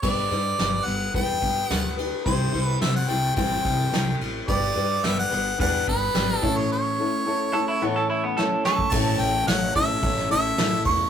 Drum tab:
CC |x---------------|----------------|----------------|----------------|
RD |--x-x-x-x-x-x-x-|x-x-x-x-x-x-x-x-|x-x-x-x-x-x-x-x-|----------------|
SD |----o-------o---|----o-------o---|----o-------o---|------------o-o-|
BD |o-------o-o-----|o-------o-o-----|o-------o-o---o-|---------------o|

CC |x-x-x-x-x-x-x-x-|
RD |----------------|
SD |----o----o--o---|
BD |o-----o-o-----o-|